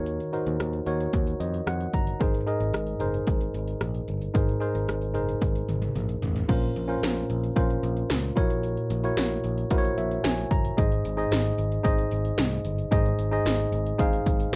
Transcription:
Already playing: picked electric bass D#2, tine electric piano D#3 D#4 F#4 A#4 C#5
0.06 closed hi-hat
0.20 closed hi-hat
0.33 tine electric piano D#4 F#4 A#4 C5, closed hi-hat
0.46 picked electric bass D#2, closed hi-hat
0.60 picked electric bass D#2, cross-stick, closed hi-hat
0.73 closed hi-hat
0.86 picked electric bass D#2, tine electric piano D#4 F#4 A#4 C#5, closed hi-hat
1.00 closed hi-hat
1.13 picked electric bass D#2, kick, closed hi-hat
1.27 closed hi-hat
1.40 picked electric bass F2, tine electric piano D#5, closed hi-hat
1.54 closed hi-hat
1.67 picked electric bass F2, tine electric piano F#5, cross-stick, closed hi-hat
1.81 closed hi-hat
1.93 picked electric bass G1, tine electric piano A#5, kick, closed hi-hat
2.07 closed hi-hat
2.20 picked electric bass G#1, tine electric piano G#2 D#4 G#4 A#4 C5, kick, closed hi-hat
2.34 closed hi-hat
2.47 tine electric piano D#4 G#4 A#4 D#5, closed hi-hat
2.60 picked electric bass G#1, closed hi-hat
2.73 picked electric bass G#1, cross-stick, closed hi-hat
2.87 closed hi-hat
3.00 picked electric bass F#1, tine electric piano D#4 G#4 A#4 C5, closed hi-hat
3.14 closed hi-hat
3.27 picked electric bass G#1, kick, closed hi-hat
3.41 closed hi-hat
3.54 picked electric bass G#1, closed hi-hat
3.68 closed hi-hat
3.81 picked electric bass A#1, cross-stick, closed hi-hat
3.95 closed hi-hat
4.08 picked electric bass G1, closed hi-hat
4.22 closed hi-hat
4.34 picked electric bass G#1, tine electric piano G#2 D#4 G#4 A#4 C5, kick, closed hi-hat
4.49 closed hi-hat
4.60 tine electric piano D#4 G#4 A#4 C5, closed hi-hat
4.75 picked electric bass G#1, closed hi-hat
4.88 picked electric bass G#1, cross-stick, closed hi-hat
5.02 closed hi-hat
5.14 picked electric bass F#1, tine electric piano D#4 G#4 A#4 C5, closed hi-hat
5.29 closed hi-hat
5.41 picked electric bass G#1, kick, closed hi-hat, high tom
5.55 closed hi-hat
5.69 picked electric bass G#1, closed hi-hat, mid tom
5.82 closed hi-hat, mid tom
5.95 picked electric bass A#1, closed hi-hat, mid tom
6.09 closed hi-hat
6.22 picked electric bass A1, closed hi-hat, floor tom
6.36 closed hi-hat, floor tom
6.48 picked electric bass A#1, tine electric piano A#2 C#4 F4 A#4 C5, kick, closed hi-hat, crash
6.63 closed hi-hat
6.76 picked electric bass A#1, closed hi-hat
6.88 tine electric piano C#4 F4 A#4 C5, closed hi-hat
7.03 picked electric bass A#1, snare, closed hi-hat
7.16 closed hi-hat
7.30 picked electric bass A#1, closed hi-hat
7.44 closed hi-hat
7.56 picked electric bass A#1, tine electric piano C#4 F4 A#4 C5, kick, closed hi-hat
7.70 closed hi-hat
7.83 picked electric bass A#1, closed hi-hat
7.97 closed hi-hat
8.10 picked electric bass C#2, snare, closed hi-hat
8.23 closed hi-hat
8.36 picked electric bass A#1, tine electric piano A#2 E4 F#4 A#4 C#5, kick, closed hi-hat
8.50 closed hi-hat
8.63 closed hi-hat
8.77 closed hi-hat
8.90 picked electric bass A#1, closed hi-hat
9.04 tine electric piano E4 F#4 A#4 C#5, closed hi-hat
9.17 picked electric bass A#1, snare, closed hi-hat
9.31 closed hi-hat
9.44 picked electric bass A#1, closed hi-hat
9.58 closed hi-hat
9.70 picked electric bass A#1, tine electric piano E4 F#4 A#4 C5, kick, closed hi-hat
9.78 tine electric piano C#5
9.84 closed hi-hat
9.98 picked electric bass A#1, tine electric piano E5, closed hi-hat
10.11 closed hi-hat
10.24 picked electric bass A#1, tine electric piano G#5, snare, closed hi-hat
10.38 closed hi-hat
10.51 picked electric bass G1, tine electric piano A#5, kick, closed hi-hat
10.65 closed hi-hat
10.77 picked electric bass G#1, tine electric piano G#2 D#4 G#4 C5 D#5, kick, closed hi-hat
10.92 closed hi-hat
11.05 picked electric bass G#1, closed hi-hat
11.17 tine electric piano D#4 G#4 C5 D#5, closed hi-hat
11.31 picked electric bass G#1, snare, closed hi-hat
11.45 closed hi-hat
11.58 picked electric bass G#1, closed hi-hat
11.72 closed hi-hat
11.83 picked electric bass G#1, tine electric piano D#4 G#4 C5 D#5, kick, closed hi-hat
11.98 closed hi-hat
12.11 picked electric bass G#1, closed hi-hat
12.25 closed hi-hat
12.38 picked electric bass C2, snare, closed hi-hat
12.51 closed hi-hat
12.65 picked electric bass G1, closed hi-hat
12.78 closed hi-hat
12.91 picked electric bass G#1, tine electric piano G#2 D#4 G#4 C5 D#5, kick, closed hi-hat
13.05 closed hi-hat
13.19 picked electric bass G#1, closed hi-hat
13.31 tine electric piano D#4 G#4 C5 D#5, closed hi-hat
13.45 picked electric bass G#1, snare, closed hi-hat
13.59 closed hi-hat
13.72 picked electric bass G#1, closed hi-hat
13.87 closed hi-hat
13.98 picked electric bass G#1, tine electric piano D#4 G#4 C5 F5, kick, closed hi-hat
14.13 closed hi-hat
14.26 picked electric bass G#1, kick, closed hi-hat
14.40 closed hi-hat

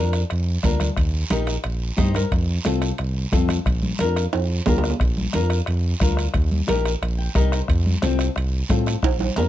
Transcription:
Already playing: analog synth bass F2, nylon-string guitar D4 F4 A#4
0.13 bombo rim, high timbale, short guiro
0.30 analog synth bass F2, bombo rim, high conga, high timbale, long guiro
0.63 analog synth bass D2, nylon-string guitar D4 F4 A#4, bombo low, bombo rim, high conga, high timbale, low timbale, short guiro
0.80 bombo rim, high conga, high timbale, short guiro
0.97 analog synth bass D#2, bombo low, bombo rim, high conga, high timbale, long guiro
1.30 analog synth bass A#1, nylon-string guitar D#4 G4 A#4, bombo rim, high conga, high timbale, short guiro
1.47 bombo rim, high timbale, short guiro
1.64 analog synth bass A#1, bombo rim, high conga, high timbale, long guiro
1.97 analog synth bass G2, nylon-string guitar D#4 G4 C5 D#5, bombo low, bombo rim, high conga, high timbale, low timbale, short guiro
2.14 nylon-string guitar A#4, bombo rim, high conga, high timbale, short guiro
2.32 analog synth bass F2, bombo low, bombo rim, high conga, high timbale, long guiro
2.64 analog synth bass C2, nylon-string guitar C4 F4 A4, bombo rim, high conga, high timbale, short guiro
2.82 bombo rim, high timbale, short guiro
2.98 analog synth bass C2, bombo rim, high conga, high timbale, long guiro
3.32 analog synth bass F2, nylon-string guitar C4 F4 A4, bombo low, bombo rim, high conga, high timbale, short guiro
3.49 bombo rim, high conga, high timbale, short guiro
3.65 analog synth bass A#1, bombo low, bombo rim, high conga, high timbale, long guiro
3.82 high conga
3.99 analog synth bass F2, nylon-string guitar D4 F4 A#4, bombo rim, high conga, high timbale, short guiro
4.16 bombo rim, high timbale, short guiro
4.33 analog synth bass F2, bombo rim, high conga, high timbale, long guiro
4.66 analog synth bass D2, nylon-string guitar D4 F4 A#4, bombo low, bombo rim, high conga, low timbale, short guiro
4.78 low timbale
4.84 bombo rim, short guiro
4.90 low timbale
5.00 analog synth bass A#1, bombo low, bombo rim, high conga, high timbale, long guiro
5.17 high conga
5.33 analog synth bass F2, nylon-string guitar D4 F4 A#4, bombo rim, high conga, high timbale, short guiro
5.50 bombo rim, high timbale, short guiro
5.66 analog synth bass F2, bombo rim, high conga, high timbale, long guiro
6.00 analog synth bass D2, nylon-string guitar D4 F4 A#4, bombo low, bombo rim, high conga, high timbale, short guiro
6.17 bombo rim, high timbale, short guiro
6.34 analog synth bass D#2, bombo low, bombo rim, high conga, high timbale, long guiro
6.52 high conga
6.67 analog synth bass A#1, nylon-string guitar D#4 G4 A#4, bombo rim, high conga, high timbale, short guiro
6.86 bombo rim, high timbale, short guiro
7.02 analog synth bass A#1, bombo rim, high conga, high timbale, long guiro
7.18 nylon-string guitar G5
7.35 analog synth bass C2, nylon-string guitar D#4 G4 A#4 D#5, bombo low, bombo rim, high conga, high timbale, short guiro
7.52 nylon-string guitar C5, bombo rim, high timbale, short guiro
7.68 analog synth bass F2, bombo low, bombo rim, high conga, high timbale, long guiro
7.86 high conga
8.02 analog synth bass C2, nylon-string guitar C4 F4 A4, bombo rim, high conga, high timbale, short guiro
8.19 bombo rim, high timbale, short guiro
8.36 analog synth bass C2, bombo rim, high conga, high timbale, long guiro
8.69 analog synth bass A2, nylon-string guitar C4 F4 A4, bombo low, bombo rim, high conga, high timbale, short guiro
8.86 bombo rim, high timbale, short guiro
9.03 analog synth bass A#1, bombo low, bombo rim, high conga, high timbale, long guiro
9.19 high conga, high timbale
9.36 analog synth bass F2, nylon-string guitar D4 F4 A#4, bombo rim, high conga, low timbale, short guiro

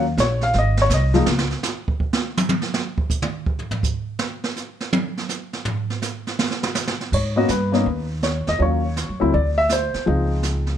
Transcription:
Already playing: upright bass D#2
0.17 upright bass A#1, grand piano C#5, snare, hi-hat pedal
0.41 grand piano F5, snare
0.53 upright bass G#1, brush sweep, snare
0.58 grand piano D#5
0.77 snare
0.82 grand piano C#5
0.89 upright bass C2, snare, hi-hat pedal
0.94 grand piano D#5
1.14 grand piano F3 G#3 A#3 D#4, snare
1.26 upright bass C#2, snare
1.38 snare
1.51 snare
1.63 snare, hi-hat pedal
1.88 kick
2.00 kick
2.13 snare
2.37 hi-hat pedal, high tom
2.49 high tom
2.62 snare
2.74 snare
2.98 kick
3.10 kick, hi-hat pedal
3.22 mid tom
3.46 kick
3.59 floor tom
3.71 floor tom
3.83 kick, hi-hat pedal
4.19 snare
4.44 snare
4.56 snare, hi-hat pedal
4.81 snare
4.93 high tom
5.17 snare
5.29 snare, hi-hat pedal
5.53 snare
5.65 floor tom
5.90 snare
6.02 snare, hi-hat pedal
6.27 snare
6.39 snare
6.51 snare
6.63 snare
6.75 snare, hi-hat pedal
6.87 snare
7.01 snare
7.12 upright bass G#2, grand piano C#5, brush sweep, kick, crash
7.36 grand piano A#3 B3 C#4 F#4 D#5
7.48 upright bass G2, grand piano B4, snare, hi-hat pedal
7.72 grand piano A#3 B3 C#4 D#4, snare
7.86 upright bass D#2, brush sweep
8.23 grand piano C#5, snare, hi-hat pedal
8.47 upright bass E2, grand piano D#5, snare
8.59 upright bass D#2, grand piano F#3 A#3 C#4 F4 C#5, brush sweep
8.97 snare, hi-hat pedal
9.09 upright bass F#2
9.20 upright bass C#2, grand piano F#3 A3 C4 E4
9.34 upright bass D2, grand piano D5, brush sweep
9.58 grand piano E5
9.69 grand piano C5, snare, hi-hat pedal
9.94 muted upright bass stroke, snare
10.06 upright bass C#2, grand piano F3 G#3 C4 D#4, brush sweep
10.43 snare, hi-hat pedal
10.67 snare

